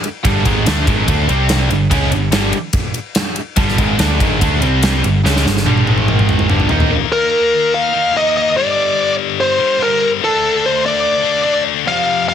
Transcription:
0.04 ride
0.25 G1 G2 D3 G3, kick, ride
0.45 G#1 G#2 D#3 G#3, kick, ride
0.66 D2 D3 A3 D4, snare, ride
0.87 G#1 G#2 D#3 G#3, kick, ride
1.08 D2 D3 A3 D4, kick, ride
1.29 C2 C3 G3 C4, ride
1.49 snare, ride
1.69 G1 G2 D3, ride
1.91 C#2 C#3 G#3 C#4, kick, ride
2.11 G1 G2 D3, ride
2.31 G1 G2 D3 G3, snare, ride
2.53 ride
2.73 kick, ride
2.94 ride
3.15 snare, ride
3.36 ride
3.56 G1 G2 D3 G3, kick, ride
3.69 snare
3.77 G#1 G#2 D#3 G#3, kick, ride
3.99 D2 D3 A3 D4, snare, ride
4.20 G#1 G#2 D#3 G#3, kick, ride
4.41 D2 D3 A3 D4, kick, ride
4.62 C2 C3 G3 C4, ride
4.83 snare, ride
5.04 G1 G2 D3, ride
5.24 C#2 C#3 G#3 C#4, snare
5.36 snare
5.45 G1 G2 D3, snare
5.57 snare
5.66 G1 G2 D3 G3, high tom
5.78 high tom
5.87 G#1 G#2 D#3 G#3, high tom
5.98 mid tom
6.08 mid tom
6.19 mid tom
6.29 mid tom
6.39 mid tom
6.50 G1 G2 D3 G3, mid tom
6.60 floor tom
6.69 D#2 D#3 A#3 D#4, floor tom
6.80 floor tom
6.90 D#3 A#3 D#4
7.12 A#4
7.74 F5
7.93 D#3 A#3 D#4
8.14 D#3 A#3 D#4 D#5
8.37 D#5
8.55 G2 D3 G3 D5
9.40 C5
9.58 G2 D3 G3
9.79 G2 D3 G3 A#4
10.21 D3 A3 D4 A4
10.66 C5
10.86 D5
11.23 D3 A3 D4
11.44 D3 A3 D4
11.85 F2 C3 F3 F5
12.28 F5

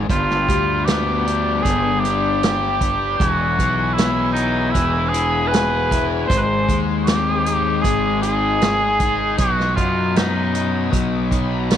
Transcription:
0.09 G1 G2 F4 D5 G5 B5, kick, closed hi-hat
0.30 snare
0.49 D2 G3, kick, closed hi-hat
0.85 B3 G4, snare, closed hi-hat
1.26 D4, closed hi-hat
1.62 G1 G3 G#4, kick, closed hi-hat
2.00 G4
2.05 D4, closed hi-hat
2.43 G4, snare, closed hi-hat
2.81 D4, kick, closed hi-hat
3.17 E1 E2 G4 G#5, kick, closed hi-hat
3.21 G#4 B5
3.28 F#4
3.59 B1 E3, kick, closed hi-hat
3.93 E4
3.98 B3, snare, closed hi-hat
4.32 D#4 E4
4.36 closed hi-hat
4.71 E3 E4
4.75 E1, kick, closed hi-hat
5.09 G#4
5.14 E4, closed hi-hat
5.47 B4
5.52 G#4, snare, closed hi-hat
5.91 E4, kick, closed hi-hat
6.27 G#1 G#2 G#3 C5 D#5 C6, kick, closed hi-hat
6.37 B4 C5
6.69 D#2 G#3, kick, closed hi-hat
7.04 G4, closed hi-hat
7.08 C4, snare
7.46 D#4, closed hi-hat
7.82 G#1 G#3 G#4, kick, closed hi-hat
8.22 D#4 G#4, closed hi-hat
8.62 G#4, snare, closed hi-hat
9.00 D#4, kick, closed hi-hat
9.38 B1 B2 F#3 F#4 B5, kick, closed hi-hat
9.60 snare
9.76 F#2 F#3 F4, kick, closed hi-hat
10.16 B3 D#4, snare, closed hi-hat
10.55 D#4, closed hi-hat
10.91 B1 F#3, kick, closed hi-hat
11.31 D#4, kick, closed hi-hat
11.70 F#4, snare, closed hi-hat

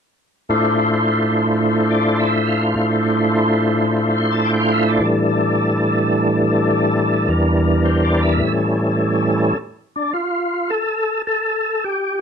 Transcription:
0.49 A2 A3 D4 E4 F4 C5
1.91 D5
2.19 E5
2.47 F5
2.75 A2 A3 D4 E4 F4 C5
4.17 C6
4.32 A5
4.45 G5
4.60 F5
4.74 E5
4.88 D5
5.00 A2 E3 G3 D4
5.05 A4
7.28 E2 E3 G3 D4 A#4
7.85 C5
8.04 D5
8.23 E5
8.36 A2 E3
8.42 G3 C#4
8.47 A4
9.96 D4
10.13 F4
10.70 A4
11.27 A4
11.84 G4

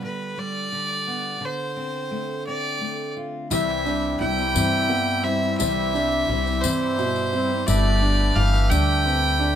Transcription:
Already playing: G3
0.02 D3 B4
0.38 G3 D5
0.72 D3
1.07 B3
1.41 D3 C5
1.76 C4
2.11 A3
2.46 C4 D5
2.81 A3
3.17 F4
3.50 C2 C3 E3 G3 C4 E4 G4 C5 E5, tambourine
3.84 G3 C4 D4 E4 C5, tambourine
4.19 C2 G3 C4 E4 C5 G5
4.37 G3 C4 E4 C5, tambourine
4.54 G2 C3 E3 G3 C4 E4 C5, tambourine
4.89 G3 B3 C4 E4, tambourine
5.08 tambourine
5.23 G3 C4 E4 E5
5.27 C5
5.42 G3 C4 E4 C5
5.57 C2 C3 E3 G3 C4 E4 C5 E5, tambourine
5.61 E4 C5
5.94 G3 C4 D4 E4 C5, tambourine
6.28 C2 G3 C4 E4 C5
6.46 G3 C4 E4 C5, tambourine
6.61 G2 C3 E3 C4 C5, tambourine
6.65 G3 C4 E4 C5
6.98 B2 G3 E4 C5, tambourine
7.16 tambourine
7.33 G3 C4 E4
7.37 C5
7.50 G3 C4 E4 C5
7.66 G1 G2 G3 A3 B3 D4 E4 G4 A4 B4 D5, tambourine
8.01 A3 D4 G4 B4
8.36 G1 E3 A3 D4 G4 B4 F5
8.54 D4 G4 B4, tambourine
8.69 D2 G3 A3 D4 G4 B4 G5, tambourine
9.05 A3 C4 D4 G4 B4, tambourine
9.24 tambourine
9.39 A3 D4 G4 B4

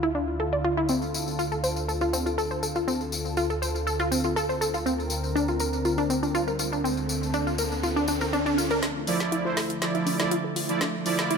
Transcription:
Already playing: D2 D3 E4 F4
0.03 E4
0.15 D4
0.40 A4
0.53 D5
0.65 F4
0.77 E4
0.89 D2 C4 A4, tambourine
1.02 tambourine
1.14 tambourine
1.28 tambourine
1.39 F4, tambourine
1.52 A4, tambourine
1.64 C5, tambourine
1.76 tambourine
1.88 A4, tambourine
2.01 F4, tambourine
2.13 C4, tambourine
2.26 F4, tambourine
2.38 A4, tambourine
2.51 C5, tambourine
2.63 A4, tambourine
2.76 F4, tambourine
2.88 C4, tambourine
3.01 tambourine
3.12 tambourine
3.25 tambourine
3.37 F4, tambourine
3.50 A4, tambourine
3.62 C5, tambourine
3.76 tambourine
3.87 A4, tambourine
3.99 F4, tambourine
4.12 C4, tambourine
4.24 F4, tambourine
4.36 A4, tambourine
4.49 C5, tambourine
4.61 A4, tambourine
4.74 F4, tambourine
4.86 D3 C4 A#4, tambourine, riser
5.00 tambourine
5.10 tambourine
5.24 tambourine
5.36 D4, tambourine
5.48 F4, tambourine
5.60 A#4, tambourine
5.73 tambourine
5.85 F4, tambourine
5.98 D4, tambourine
6.10 C4, tambourine
6.23 D4, tambourine
6.35 F4, tambourine
6.48 A#4, tambourine
6.59 F4, tambourine
6.72 D4, tambourine
6.84 C4 A4, tambourine
6.97 tambourine
7.09 tambourine
7.23 tambourine
7.34 D4, tambourine
7.47 F4, tambourine
7.58 A#4, tambourine
7.72 tambourine
7.83 F4, tambourine
7.96 D4, tambourine
8.08 D4, tambourine
8.21 A#4, tambourine
8.33 D4, tambourine
8.46 D4, tambourine
8.58 F4, tambourine
8.71 A#4, tambourine
8.83 D3 F3 A3 D4 E4, snare, closed hi-hat, riser
9.07 D2 F3 E4 D5, open hi-hat
9.20 snare, closed hi-hat
9.32 E4, closed hi-hat
9.45 F3 E4 F4 C5
9.57 D2 A4, snare, open hi-hat
9.70 closed hi-hat
9.82 F3 E4 F4 D5, snare, closed hi-hat
9.95 E4, closed hi-hat
10.07 D2 D4, open hi-hat
10.20 F3 E4 D5, snare, closed hi-hat
10.31 F4, closed hi-hat
10.44 A4
10.56 D2 F4, open hi-hat
10.69 F3 E4 D5, closed hi-hat
10.81 D4, snare, closed hi-hat
11.06 D2 F3 E4 D5, open hi-hat
11.19 snare, closed hi-hat
11.31 E4, closed hi-hat

